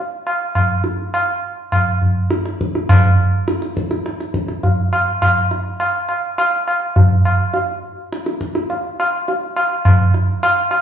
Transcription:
0.27 tabla na medium
0.55 tabla na medium
0.55 tabla ge medium
0.84 tabla te medium
1.14 tabla na medium
1.72 tabla na medium
1.72 tabla ge medium
2.02 tabla ge medium
2.31 tabla te medium
2.46 tabla te medium
2.61 tabla ke medium
2.75 tabla te medium
2.89 tabla na medium
2.89 tabla ge medium
3.48 tabla te medium
3.62 tabla te medium
3.77 tabla ke medium
3.91 tabla te medium
4.06 tabla te medium
4.20 tabla te medium
4.34 tabla ke medium
4.48 tabla te medium
4.63 tabla tin medium
4.63 tabla ge medium
4.93 tabla na medium
5.22 tabla na medium
5.22 tabla ge medium
5.51 tabla te medium
5.80 tabla na medium
6.09 tabla na medium
6.38 tabla na medium
6.68 tabla na medium
6.96 tabla tin medium
6.96 tabla ge medium
7.25 tabla na medium
7.54 tabla tin medium
8.13 tabla te medium
8.26 tabla te medium
8.41 tabla ke medium
8.55 tabla te medium
8.70 tabla tin medium
9.00 tabla na medium
9.28 tabla tin medium
9.56 tabla na medium
9.85 tabla na medium
9.85 tabla ge medium
10.14 tabla te medium
10.43 tabla na medium
10.71 tabla na medium

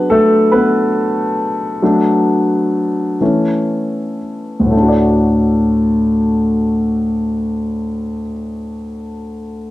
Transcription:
0.00 0.48 F#3 soft
0.00 0.53 B3 medium
0.00 0.48 D4 soft
0.00 0.48 G#4 soft
0.00 0.12 B4 medium
0.10 0.50 A3 medium
0.10 0.53 A4 medium
0.52 4.17 B3 medium
0.52 4.17 B4 medium
1.82 3.17 F#3 soft
1.82 3.17 A3 soft
1.82 3.18 D4 soft
3.21 4.69 E3 soft
3.21 4.69 A3 soft
3.21 4.70 C#4 soft
4.60 8.02 D2 soft
4.65 8.08 A2 soft
4.71 8.13 A3 soft
4.77 8.19 D4 soft
4.83 8.25 F#4 soft
4.88 8.31 D5 soft

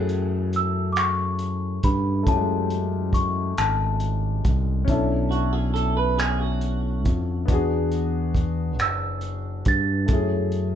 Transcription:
0.00 1.79 F#2 medium
0.00 2.21 A3 medium
0.00 2.22 C#4 soft
0.00 2.23 E4 soft
0.00 2.24 G#4 medium
0.00 0.58 F#6 medium
0.09 closed hi-hat soft
0.53 0.88 E6 medium
0.53 closed hi-hat medium
0.93 0.98 D6 medium
0.93 closed hi-hat medium
0.97 1.87 C#6 medium
0.97 finger snap medium
1.39 closed hi-hat soft
1.83 2.23 G2 medium
1.83 2.28 B5 medium
1.83 kick medium
1.83 closed hi-hat medium
2.23 4.81 A3 medium
2.23 4.83 C#4 soft
2.23 kick medium
2.23 closed hi-hat medium
2.27 3.53 F#2 medium
2.27 4.84 E4 medium
2.27 2.35 G4 soft
2.27 3.17 A5 medium
2.37 4.88 G#3 medium
2.70 closed hi-hat soft
3.13 3.58 C#6 medium
3.13 kick medium
3.13 closed hi-hat medium
3.58 4.40 G#1 medium
3.58 4.51 A5 medium
3.58 finger snap loud
3.58 closed hi-hat medium
4.00 closed hi-hat medium
4.45 4.84 C2 medium
4.45 kick medium
4.45 closed hi-hat medium
4.85 7.07 B1 loud
4.85 7.43 C#4 medium
4.85 7.44 D4 medium
4.85 kick medium
4.85 closed hi-hat medium
4.89 7.45 E4 medium
4.89 7.46 A4 medium
5.31 5.53 F#4 medium
5.31 closed hi-hat soft
5.53 5.73 G#4 medium
5.74 5.94 A4 medium
5.74 closed hi-hat medium
5.97 6.17 B4 medium
6.18 6.40 G#4 medium
6.18 finger snap loud
6.18 closed hi-hat medium
6.40 7.44 F#4 medium
6.61 closed hi-hat soft
7.05 7.45 F2 medium
7.05 kick medium
7.05 closed hi-hat medium
7.46 8.80 E2 medium
7.46 10.03 B3 medium
7.46 10.05 D4 medium
7.46 kick medium
7.46 closed hi-hat medium
7.50 10.06 F#4 medium
7.50 10.07 G#4 medium
7.92 closed hi-hat soft
8.35 kick medium
8.35 closed hi-hat soft
8.79 9.62 F#1 medium
8.79 9.63 E6 medium
8.79 finger snap loud
8.79 closed hi-hat medium
9.21 closed hi-hat soft
9.65 10.05 G2 medium
9.65 10.75 A6 medium
9.65 kick medium
9.65 closed hi-hat medium
10.06 10.75 F#2 medium
10.06 10.75 A3 medium
10.06 10.75 C#4 soft
10.06 kick medium
10.06 closed hi-hat medium
10.11 10.75 E4 soft
10.11 10.75 G#4 medium
10.52 closed hi-hat soft

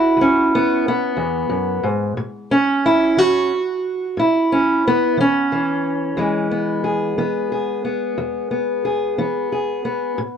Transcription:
0.00 0.86 E4 medium
0.00 0.53 F#4 medium
0.17 0.77 E2 medium
0.21 1.19 C#4 medium
0.55 0.86 B3 medium
0.88 1.86 B3 medium
1.17 1.49 E2 medium
1.49 1.83 F#2 medium
1.83 2.17 G#2 medium
2.17 2.77 A2 medium
2.51 3.51 C#4 loud
2.86 3.18 E4 medium
3.17 3.77 E3 medium
3.17 4.18 F#4 medium
4.17 4.77 A2 medium
4.17 5.19 E4 medium
4.52 4.85 C#4 medium
4.88 5.19 B3 medium
5.17 5.51 E3 medium
5.17 6.51 C#4 loud
5.52 6.17 E3 medium
6.17 6.77 E2 medium
6.17 7.17 E3 soft
6.17 10.19 G#3 soft
6.51 7.17 B3 soft
6.84 7.51 G#4 medium
7.18 7.78 E3 medium
7.18 7.83 B3 soft
7.52 8.84 G#4 soft
7.85 8.50 B3 soft
8.18 8.78 E2 medium
8.51 9.17 B3 soft
8.85 9.51 G#4 soft
9.18 9.78 E3 medium
9.18 9.84 B3 soft
9.52 10.15 G#4 soft
9.85 10.18 B3 medium
10.18 10.37 A2 medium

